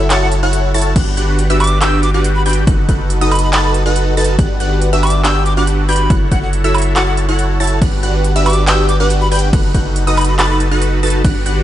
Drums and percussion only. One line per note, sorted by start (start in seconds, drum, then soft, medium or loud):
0.10 clap loud
0.10 closed hi-hat medium
0.32 closed hi-hat medium
0.53 closed hi-hat medium
0.74 closed hi-hat medium
0.74 open hi-hat loud
0.82 closed hi-hat medium
0.96 kick loud
0.96 closed hi-hat medium
0.96 crash medium
1.17 closed hi-hat medium
1.39 closed hi-hat medium
1.50 closed hi-hat medium
1.60 closed hi-hat medium
1.60 high woodblock medium
1.64 closed hi-hat medium
1.67 closed hi-hat medium
1.82 clap loud
1.82 closed hi-hat medium
2.03 closed hi-hat medium
2.24 closed hi-hat medium
2.46 closed hi-hat medium
2.46 open hi-hat medium
2.53 closed hi-hat medium
2.67 kick loud
2.67 closed hi-hat medium
2.89 kick medium
2.89 closed hi-hat medium
3.10 closed hi-hat medium
3.21 closed hi-hat medium
3.32 closed hi-hat medium
3.32 high woodblock medium
3.35 closed hi-hat medium
3.39 closed hi-hat medium
3.53 clap loud
3.53 closed hi-hat medium
3.74 closed hi-hat medium
3.96 closed hi-hat medium
4.17 closed hi-hat medium
4.17 open hi-hat medium
4.24 closed hi-hat medium
4.39 kick loud
4.39 closed hi-hat medium
4.60 closed hi-hat medium
4.82 closed hi-hat medium
4.93 closed hi-hat medium
5.03 closed hi-hat soft
5.03 high woodblock medium
5.07 closed hi-hat medium
5.10 closed hi-hat medium
5.25 clap loud
5.25 closed hi-hat medium
5.46 closed hi-hat medium
5.67 closed hi-hat medium
5.89 closed hi-hat medium
5.89 open hi-hat medium
5.96 closed hi-hat medium
6.10 kick loud
6.10 closed hi-hat medium
6.32 kick medium
6.32 closed hi-hat medium
6.53 closed hi-hat medium
6.64 closed hi-hat medium
6.75 closed hi-hat soft
6.75 high woodblock medium
6.78 closed hi-hat medium
6.82 closed hi-hat medium
6.96 clap loud
6.96 closed hi-hat medium
7.17 closed hi-hat medium
7.39 closed hi-hat medium
7.60 closed hi-hat medium
7.60 open hi-hat medium
7.67 closed hi-hat medium
7.82 kick loud
7.82 closed hi-hat medium
7.82 crash soft
8.03 closed hi-hat medium
8.24 closed hi-hat medium
8.36 closed hi-hat medium
8.46 closed hi-hat medium
8.46 high woodblock medium
8.50 closed hi-hat medium
8.53 closed hi-hat medium
8.67 clap loud
8.67 closed hi-hat medium
8.89 closed hi-hat medium
9.10 closed hi-hat medium
9.32 closed hi-hat medium
9.32 open hi-hat medium
9.39 closed hi-hat medium
9.53 kick loud
9.53 closed hi-hat medium
9.53 crash soft
9.74 kick medium
9.74 closed hi-hat medium
9.96 closed hi-hat medium
10.07 closed hi-hat medium
10.17 closed hi-hat medium
10.17 high woodblock medium
10.21 closed hi-hat medium
10.25 closed hi-hat medium
10.39 clap loud
10.39 closed hi-hat medium
10.60 closed hi-hat medium
10.82 closed hi-hat medium
11.03 closed hi-hat medium
11.03 open hi-hat loud
11.10 closed hi-hat medium
11.24 kick loud
11.24 closed hi-hat medium
11.24 crash soft
11.46 closed hi-hat medium